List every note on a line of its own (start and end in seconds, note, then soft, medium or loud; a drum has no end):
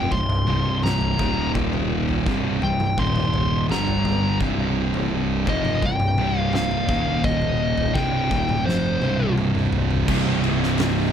0.00 0.10 F1 loud
0.00 0.11 F2 medium
0.00 0.11 C3 medium
0.00 0.12 F3 medium
0.00 0.13 G5 medium
0.11 0.46 C1 medium
0.11 0.41 C2 medium
0.11 0.41 G2 medium
0.11 0.83 C6 loud
0.11 kick medium
0.11 floor tom medium
0.30 floor tom medium
0.30 mid tom medium
0.46 1.15 C1 medium
0.46 1.18 C2 medium
0.46 1.18 G2 medium
0.46 1.19 C3 medium
0.46 floor tom medium
0.83 1.51 A#5 medium
0.83 snare medium
0.83 mid tom medium
1.01 floor tom medium
1.19 2.22 D#1 loud
1.19 2.25 D#2 medium
1.19 2.26 A#2 loud
1.19 2.26 D#3 loud
1.19 kick loud
1.19 floor tom medium
1.55 kick loud
1.55 floor tom medium
1.73 floor tom medium
2.09 floor tom medium
2.26 2.60 C1 medium
2.26 2.61 C2 medium
2.26 2.62 G2 medium
2.26 2.62 C3 loud
2.26 kick loud
2.62 2.96 C1 medium
2.62 2.91 C2 medium
2.62 2.91 G2 medium
2.62 3.00 G5 medium
2.62 floor tom medium
2.80 mid tom medium
2.98 3.65 D#1 loud
2.98 3.68 D#2 medium
2.98 3.69 A#2 loud
2.98 3.69 D#3 loud
2.98 3.66 C6 loud
2.98 kick loud
2.98 floor tom medium
3.16 floor tom medium
3.16 mid tom medium
3.34 floor tom medium
3.69 4.37 G1 medium
3.69 4.39 G2 medium
3.69 4.40 D3 medium
3.69 4.40 G3 loud
3.69 4.38 A#5 medium
3.69 snare medium
3.69 mid tom medium
3.88 floor tom medium
4.05 floor tom medium
4.05 mid tom medium
4.40 5.43 C1 medium
4.40 5.46 C2 medium
4.40 5.46 G2 loud
4.40 5.46 C3 loud
4.40 kick loud
4.40 floor tom medium
4.94 floor tom medium
5.47 5.80 F1 loud
5.47 5.82 F2 medium
5.47 5.82 C3 medium
5.47 5.82 F3 medium
5.47 5.85 D#5 loud
5.47 kick loud
5.47 floor tom medium
5.65 mid tom medium
5.82 6.16 C1 medium
5.82 6.11 C2 medium
5.82 6.11 G2 medium
5.82 6.38 G5 loud
5.82 kick medium
5.82 floor tom medium
6.00 floor tom medium
6.00 mid tom medium
6.18 6.85 C1 medium
6.18 6.88 C2 medium
6.18 6.88 G2 medium
6.18 6.88 C3 loud
6.18 floor tom medium
6.38 6.54 F5 loud
6.53 7.27 F5 loud
6.53 snare medium
6.53 mid tom medium
6.71 floor tom medium
6.88 7.91 D#1 loud
6.88 7.94 D#2 medium
6.88 7.94 A#2 medium
6.88 7.94 D#3 loud
6.88 kick loud
6.88 floor tom medium
7.24 7.97 D#5 medium
7.24 kick loud
7.24 floor tom medium
7.42 floor tom medium
7.78 floor tom medium
7.94 8.28 C1 medium
7.94 8.29 C2 medium
7.94 8.30 G2 loud
7.94 8.30 C3 loud
7.94 8.68 G5 medium
7.94 kick loud
8.29 8.64 D#1 loud
8.29 8.64 D#2 medium
8.29 8.65 A#2 loud
8.29 8.65 D#3 medium
8.29 kick loud
8.29 floor tom medium
8.49 mid tom medium
8.65 9.00 F1 loud
8.65 9.00 F2 medium
8.65 9.01 C3 medium
8.65 9.01 F3 loud
8.65 9.33 C5 medium
8.65 snare medium
9.01 10.04 C1 medium
9.01 10.06 C2 medium
9.01 10.07 G2 loud
9.01 10.07 C3 medium
9.01 high tom medium
9.38 mid tom medium
9.55 mid tom medium
9.73 floor tom loud
9.91 floor tom medium
10.08 11.10 C1 medium
10.08 11.12 C2 medium
10.08 11.12 G2 loud
10.08 11.12 C3 loud
10.08 kick loud
10.08 crash loud
10.44 ride medium
10.63 snare soft
10.78 snare loud
10.78 ride loud